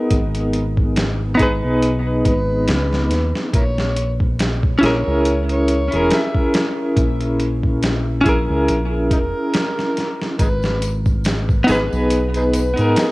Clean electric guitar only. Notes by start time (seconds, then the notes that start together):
Already playing: B3 D#4 G#4 A#4
1.35 B3 D#4
1.40 G#4 B4
4.79 C#4 E4
4.84 G#4 A#4
5.88 C#4 E4
5.93 G#4 A#4
8.21 C#4 E4
8.26 G#4 A#4
11.64 B3 D#4
11.69 G#4 B4
12.74 B3 D#4
12.78 G#4 A#4